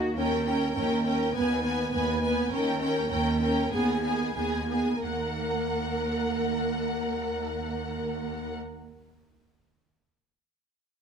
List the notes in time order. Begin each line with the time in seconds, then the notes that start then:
Already playing: F#4
0.17 D#2 C#4 A#4 G5
0.46 C#4 A#4 G5
0.75 D#2 C#4 A#4 G5
1.04 C#4 A#4 G5
1.34 D#2 B3 B4 G#5
1.63 B3 B4 G#5
1.92 D#2 B3 B4 G#5
2.22 B3 B4 G#5
2.51 D#2 C#4 A#4 G5
2.80 C#4 A#4 G5
3.10 D#2 C#4 A#4 G5
3.41 C#4 A#4 G5
3.72 D#2 B3 G#4 G#5
4.03 B3 G#4 G#5
4.35 D#2 B3 G#4 G#5
4.69 B3 G#4 G#5
5.03 D#2 A#3 A#4 F#5